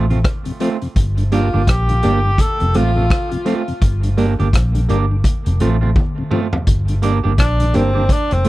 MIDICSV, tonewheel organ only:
0, 0, Header, 1, 2, 480
1, 0, Start_track
1, 0, Key_signature, -2, "minor"
1, 0, Tempo, 713606
1, 646, Time_signature, 4, 2, 24, 8
1, 5709, End_track
2, 0, Start_track
2, 0, Title_t, "Tonewheel organ"
2, 0, Program_c, 0, 16
2, 72, Note_on_c, 0, 48, 58
2, 75, Note_on_c, 0, 41, 59
2, 112, Note_off_c, 0, 48, 0
2, 113, Note_off_c, 0, 41, 0
2, 309, Note_on_c, 0, 48, 62
2, 310, Note_on_c, 0, 41, 62
2, 350, Note_off_c, 0, 48, 0
2, 351, Note_off_c, 0, 41, 0
2, 405, Note_on_c, 0, 53, 78
2, 406, Note_on_c, 0, 57, 68
2, 410, Note_on_c, 0, 60, 82
2, 466, Note_off_c, 0, 53, 0
2, 467, Note_off_c, 0, 57, 0
2, 469, Note_off_c, 0, 60, 0
2, 552, Note_on_c, 0, 48, 61
2, 553, Note_on_c, 0, 41, 60
2, 592, Note_off_c, 0, 41, 0
2, 592, Note_off_c, 0, 48, 0
2, 790, Note_on_c, 0, 50, 55
2, 792, Note_on_c, 0, 43, 61
2, 831, Note_off_c, 0, 50, 0
2, 832, Note_off_c, 0, 43, 0
2, 887, Note_on_c, 0, 55, 70
2, 889, Note_on_c, 0, 58, 68
2, 891, Note_on_c, 0, 62, 80
2, 947, Note_off_c, 0, 55, 0
2, 948, Note_off_c, 0, 58, 0
2, 949, Note_off_c, 0, 62, 0
2, 1032, Note_on_c, 0, 50, 64
2, 1033, Note_on_c, 0, 43, 63
2, 1072, Note_off_c, 0, 43, 0
2, 1072, Note_off_c, 0, 50, 0
2, 1271, Note_on_c, 0, 43, 64
2, 1273, Note_on_c, 0, 50, 62
2, 1311, Note_off_c, 0, 43, 0
2, 1312, Note_off_c, 0, 50, 0
2, 1370, Note_on_c, 0, 55, 77
2, 1370, Note_on_c, 0, 58, 73
2, 1374, Note_on_c, 0, 62, 85
2, 1429, Note_off_c, 0, 55, 0
2, 1429, Note_off_c, 0, 58, 0
2, 1431, Note_off_c, 0, 62, 0
2, 1517, Note_on_c, 0, 43, 63
2, 1518, Note_on_c, 0, 50, 62
2, 1554, Note_off_c, 0, 43, 0
2, 1555, Note_off_c, 0, 50, 0
2, 1754, Note_on_c, 0, 41, 59
2, 1755, Note_on_c, 0, 48, 67
2, 1793, Note_off_c, 0, 41, 0
2, 1793, Note_off_c, 0, 48, 0
2, 1844, Note_on_c, 0, 53, 75
2, 1847, Note_on_c, 0, 57, 77
2, 1850, Note_on_c, 0, 60, 85
2, 1906, Note_off_c, 0, 53, 0
2, 1907, Note_off_c, 0, 57, 0
2, 1909, Note_off_c, 0, 60, 0
2, 1993, Note_on_c, 0, 41, 60
2, 1993, Note_on_c, 0, 48, 57
2, 2032, Note_off_c, 0, 48, 0
2, 2033, Note_off_c, 0, 41, 0
2, 2230, Note_on_c, 0, 41, 64
2, 2230, Note_on_c, 0, 48, 60
2, 2271, Note_off_c, 0, 41, 0
2, 2271, Note_off_c, 0, 48, 0
2, 2321, Note_on_c, 0, 53, 68
2, 2325, Note_on_c, 0, 60, 82
2, 2326, Note_on_c, 0, 57, 67
2, 2384, Note_off_c, 0, 53, 0
2, 2386, Note_off_c, 0, 60, 0
2, 2387, Note_off_c, 0, 57, 0
2, 2474, Note_on_c, 0, 48, 57
2, 2475, Note_on_c, 0, 41, 62
2, 2513, Note_off_c, 0, 41, 0
2, 2513, Note_off_c, 0, 48, 0
2, 2715, Note_on_c, 0, 50, 59
2, 2717, Note_on_c, 0, 43, 61
2, 2753, Note_off_c, 0, 50, 0
2, 2754, Note_off_c, 0, 43, 0
2, 2808, Note_on_c, 0, 55, 70
2, 2809, Note_on_c, 0, 58, 68
2, 2810, Note_on_c, 0, 62, 81
2, 2868, Note_off_c, 0, 55, 0
2, 2868, Note_off_c, 0, 58, 0
2, 2869, Note_off_c, 0, 62, 0
2, 2952, Note_on_c, 0, 43, 62
2, 2953, Note_on_c, 0, 50, 66
2, 2992, Note_off_c, 0, 43, 0
2, 2992, Note_off_c, 0, 50, 0
2, 3194, Note_on_c, 0, 43, 63
2, 3194, Note_on_c, 0, 50, 56
2, 3233, Note_off_c, 0, 43, 0
2, 3233, Note_off_c, 0, 50, 0
2, 3293, Note_on_c, 0, 55, 73
2, 3294, Note_on_c, 0, 58, 69
2, 3295, Note_on_c, 0, 62, 81
2, 3350, Note_off_c, 0, 55, 0
2, 3351, Note_off_c, 0, 58, 0
2, 3351, Note_off_c, 0, 62, 0
2, 3439, Note_on_c, 0, 43, 60
2, 3439, Note_on_c, 0, 50, 60
2, 3475, Note_off_c, 0, 43, 0
2, 3475, Note_off_c, 0, 50, 0
2, 3679, Note_on_c, 0, 48, 57
2, 3680, Note_on_c, 0, 41, 64
2, 3715, Note_off_c, 0, 48, 0
2, 3716, Note_off_c, 0, 41, 0
2, 3772, Note_on_c, 0, 53, 79
2, 3776, Note_on_c, 0, 57, 68
2, 3778, Note_on_c, 0, 60, 93
2, 3830, Note_off_c, 0, 53, 0
2, 3832, Note_off_c, 0, 57, 0
2, 3833, Note_off_c, 0, 60, 0
2, 3921, Note_on_c, 0, 41, 57
2, 3922, Note_on_c, 0, 48, 56
2, 3956, Note_off_c, 0, 41, 0
2, 3957, Note_off_c, 0, 48, 0
2, 4157, Note_on_c, 0, 41, 59
2, 4158, Note_on_c, 0, 48, 59
2, 4194, Note_off_c, 0, 41, 0
2, 4195, Note_off_c, 0, 48, 0
2, 4251, Note_on_c, 0, 53, 77
2, 4252, Note_on_c, 0, 57, 67
2, 4256, Note_on_c, 0, 60, 79
2, 4309, Note_off_c, 0, 53, 0
2, 4310, Note_off_c, 0, 57, 0
2, 4312, Note_off_c, 0, 60, 0
2, 4396, Note_on_c, 0, 41, 61
2, 4397, Note_on_c, 0, 48, 61
2, 4434, Note_off_c, 0, 41, 0
2, 4434, Note_off_c, 0, 48, 0
2, 4635, Note_on_c, 0, 43, 57
2, 4636, Note_on_c, 0, 50, 56
2, 4673, Note_off_c, 0, 43, 0
2, 4674, Note_off_c, 0, 50, 0
2, 4736, Note_on_c, 0, 55, 67
2, 4736, Note_on_c, 0, 58, 60
2, 4740, Note_on_c, 0, 62, 79
2, 4792, Note_off_c, 0, 55, 0
2, 4792, Note_off_c, 0, 58, 0
2, 4794, Note_off_c, 0, 62, 0
2, 4876, Note_on_c, 0, 43, 59
2, 4877, Note_on_c, 0, 50, 64
2, 4914, Note_off_c, 0, 43, 0
2, 4914, Note_off_c, 0, 50, 0
2, 5114, Note_on_c, 0, 50, 54
2, 5115, Note_on_c, 0, 43, 61
2, 5152, Note_off_c, 0, 50, 0
2, 5153, Note_off_c, 0, 43, 0
2, 5210, Note_on_c, 0, 55, 74
2, 5214, Note_on_c, 0, 58, 67
2, 5215, Note_on_c, 0, 62, 77
2, 5269, Note_off_c, 0, 55, 0
2, 5271, Note_off_c, 0, 58, 0
2, 5271, Note_off_c, 0, 62, 0
2, 5356, Note_on_c, 0, 43, 61
2, 5357, Note_on_c, 0, 50, 64
2, 5394, Note_off_c, 0, 43, 0
2, 5394, Note_off_c, 0, 50, 0
2, 5597, Note_on_c, 0, 48, 63
2, 5599, Note_on_c, 0, 41, 57
2, 5634, Note_off_c, 0, 48, 0
2, 5635, Note_off_c, 0, 41, 0
2, 5688, Note_on_c, 0, 53, 82
2, 5709, Note_off_c, 0, 53, 0
2, 5709, End_track
0, 0, End_of_file